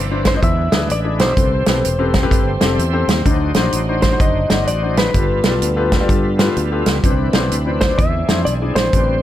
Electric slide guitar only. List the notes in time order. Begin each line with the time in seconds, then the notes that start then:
0.27 C5
0.37 D#5
0.44 E5
0.92 D5
1.21 C5
4.02 C5
4.21 D#5
4.68 D5
4.98 B4
7.81 C5
7.98 E5
8.45 D5
8.75 C5